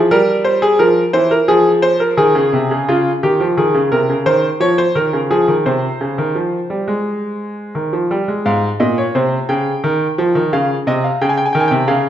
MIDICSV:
0, 0, Header, 1, 2, 480
1, 0, Start_track
1, 0, Key_signature, -4, "major"
1, 0, Tempo, 684932
1, 80, Time_signature, 4, 2, 24, 8
1, 1521, Tempo, 697674
1, 6321, Tempo, 683371
1, 8389, End_track
2, 0, Start_track
2, 0, Title_t, "Grand piano"
2, 0, Program_c, 0, 0
2, 0, Note_on_c, 0, 53, 66
2, 75, Note_off_c, 0, 53, 0
2, 78, Note_on_c, 0, 55, 75
2, 78, Note_on_c, 0, 70, 90
2, 226, Note_off_c, 0, 70, 0
2, 312, Note_on_c, 0, 72, 72
2, 431, Note_off_c, 0, 72, 0
2, 435, Note_on_c, 0, 68, 83
2, 543, Note_off_c, 0, 55, 0
2, 553, Note_off_c, 0, 68, 0
2, 555, Note_on_c, 0, 53, 66
2, 555, Note_on_c, 0, 70, 87
2, 705, Note_off_c, 0, 53, 0
2, 705, Note_off_c, 0, 70, 0
2, 795, Note_on_c, 0, 72, 77
2, 796, Note_on_c, 0, 52, 67
2, 913, Note_off_c, 0, 72, 0
2, 917, Note_on_c, 0, 70, 75
2, 945, Note_off_c, 0, 52, 0
2, 1034, Note_off_c, 0, 70, 0
2, 1037, Note_on_c, 0, 53, 73
2, 1039, Note_on_c, 0, 68, 86
2, 1188, Note_off_c, 0, 68, 0
2, 1278, Note_on_c, 0, 72, 83
2, 1396, Note_off_c, 0, 72, 0
2, 1401, Note_on_c, 0, 70, 69
2, 1506, Note_off_c, 0, 53, 0
2, 1518, Note_off_c, 0, 70, 0
2, 1523, Note_on_c, 0, 51, 71
2, 1524, Note_on_c, 0, 68, 81
2, 1639, Note_off_c, 0, 51, 0
2, 1645, Note_on_c, 0, 49, 67
2, 1760, Note_off_c, 0, 49, 0
2, 1768, Note_on_c, 0, 48, 69
2, 1883, Note_off_c, 0, 48, 0
2, 1892, Note_on_c, 0, 49, 64
2, 1992, Note_off_c, 0, 68, 0
2, 2002, Note_off_c, 0, 49, 0
2, 2012, Note_on_c, 0, 49, 69
2, 2013, Note_on_c, 0, 65, 69
2, 2160, Note_off_c, 0, 49, 0
2, 2160, Note_off_c, 0, 65, 0
2, 2251, Note_on_c, 0, 51, 58
2, 2251, Note_on_c, 0, 67, 64
2, 2365, Note_off_c, 0, 51, 0
2, 2370, Note_on_c, 0, 53, 66
2, 2398, Note_off_c, 0, 67, 0
2, 2484, Note_off_c, 0, 53, 0
2, 2487, Note_on_c, 0, 51, 62
2, 2488, Note_on_c, 0, 68, 68
2, 2601, Note_off_c, 0, 51, 0
2, 2604, Note_on_c, 0, 49, 59
2, 2634, Note_off_c, 0, 68, 0
2, 2718, Note_off_c, 0, 49, 0
2, 2722, Note_on_c, 0, 70, 69
2, 2723, Note_on_c, 0, 48, 63
2, 2838, Note_off_c, 0, 48, 0
2, 2845, Note_on_c, 0, 49, 59
2, 2869, Note_off_c, 0, 70, 0
2, 2958, Note_off_c, 0, 49, 0
2, 2959, Note_on_c, 0, 51, 64
2, 2959, Note_on_c, 0, 72, 80
2, 3106, Note_off_c, 0, 51, 0
2, 3107, Note_off_c, 0, 72, 0
2, 3195, Note_on_c, 0, 53, 66
2, 3197, Note_on_c, 0, 73, 82
2, 3313, Note_off_c, 0, 73, 0
2, 3318, Note_on_c, 0, 72, 76
2, 3343, Note_off_c, 0, 53, 0
2, 3433, Note_off_c, 0, 72, 0
2, 3436, Note_on_c, 0, 51, 63
2, 3437, Note_on_c, 0, 70, 73
2, 3552, Note_off_c, 0, 51, 0
2, 3558, Note_on_c, 0, 49, 62
2, 3585, Note_off_c, 0, 70, 0
2, 3674, Note_off_c, 0, 49, 0
2, 3677, Note_on_c, 0, 53, 67
2, 3679, Note_on_c, 0, 68, 72
2, 3794, Note_off_c, 0, 53, 0
2, 3798, Note_on_c, 0, 51, 59
2, 3828, Note_off_c, 0, 68, 0
2, 3915, Note_off_c, 0, 51, 0
2, 3921, Note_on_c, 0, 48, 69
2, 3921, Note_on_c, 0, 72, 57
2, 4069, Note_off_c, 0, 48, 0
2, 4160, Note_on_c, 0, 49, 56
2, 4275, Note_off_c, 0, 49, 0
2, 4281, Note_on_c, 0, 51, 65
2, 4395, Note_off_c, 0, 51, 0
2, 4399, Note_on_c, 0, 53, 54
2, 4548, Note_off_c, 0, 53, 0
2, 4637, Note_on_c, 0, 55, 52
2, 4755, Note_off_c, 0, 55, 0
2, 4758, Note_on_c, 0, 56, 59
2, 5345, Note_off_c, 0, 56, 0
2, 5360, Note_on_c, 0, 51, 54
2, 5478, Note_off_c, 0, 51, 0
2, 5482, Note_on_c, 0, 53, 54
2, 5579, Note_off_c, 0, 72, 0
2, 5601, Note_off_c, 0, 53, 0
2, 5606, Note_on_c, 0, 55, 57
2, 5723, Note_off_c, 0, 55, 0
2, 5725, Note_on_c, 0, 56, 49
2, 5842, Note_off_c, 0, 56, 0
2, 5846, Note_on_c, 0, 44, 73
2, 5846, Note_on_c, 0, 77, 64
2, 5994, Note_off_c, 0, 44, 0
2, 5994, Note_off_c, 0, 77, 0
2, 6080, Note_on_c, 0, 75, 61
2, 6083, Note_on_c, 0, 46, 69
2, 6198, Note_off_c, 0, 75, 0
2, 6205, Note_on_c, 0, 73, 64
2, 6230, Note_off_c, 0, 46, 0
2, 6320, Note_off_c, 0, 73, 0
2, 6322, Note_on_c, 0, 72, 57
2, 6323, Note_on_c, 0, 48, 72
2, 6472, Note_off_c, 0, 48, 0
2, 6472, Note_off_c, 0, 72, 0
2, 6560, Note_on_c, 0, 79, 57
2, 6561, Note_on_c, 0, 49, 72
2, 6711, Note_off_c, 0, 49, 0
2, 6806, Note_on_c, 0, 51, 73
2, 6954, Note_off_c, 0, 51, 0
2, 7049, Note_on_c, 0, 53, 73
2, 7164, Note_off_c, 0, 53, 0
2, 7167, Note_on_c, 0, 51, 69
2, 7262, Note_off_c, 0, 79, 0
2, 7283, Note_off_c, 0, 51, 0
2, 7291, Note_on_c, 0, 49, 69
2, 7292, Note_on_c, 0, 77, 60
2, 7439, Note_off_c, 0, 49, 0
2, 7440, Note_off_c, 0, 77, 0
2, 7530, Note_on_c, 0, 48, 74
2, 7533, Note_on_c, 0, 75, 66
2, 7647, Note_off_c, 0, 75, 0
2, 7652, Note_on_c, 0, 77, 49
2, 7679, Note_off_c, 0, 48, 0
2, 7767, Note_off_c, 0, 77, 0
2, 7773, Note_on_c, 0, 49, 76
2, 7774, Note_on_c, 0, 79, 60
2, 7827, Note_off_c, 0, 79, 0
2, 7827, Note_on_c, 0, 80, 57
2, 7882, Note_off_c, 0, 80, 0
2, 7886, Note_on_c, 0, 79, 61
2, 7919, Note_off_c, 0, 49, 0
2, 7938, Note_off_c, 0, 79, 0
2, 7942, Note_on_c, 0, 80, 53
2, 7993, Note_on_c, 0, 79, 53
2, 7994, Note_off_c, 0, 80, 0
2, 8007, Note_on_c, 0, 51, 77
2, 8045, Note_on_c, 0, 80, 55
2, 8047, Note_off_c, 0, 79, 0
2, 8099, Note_on_c, 0, 79, 61
2, 8101, Note_off_c, 0, 80, 0
2, 8122, Note_off_c, 0, 51, 0
2, 8122, Note_on_c, 0, 48, 75
2, 8238, Note_off_c, 0, 48, 0
2, 8238, Note_off_c, 0, 79, 0
2, 8238, Note_on_c, 0, 77, 62
2, 8239, Note_on_c, 0, 49, 74
2, 8387, Note_off_c, 0, 77, 0
2, 8388, Note_off_c, 0, 49, 0
2, 8389, End_track
0, 0, End_of_file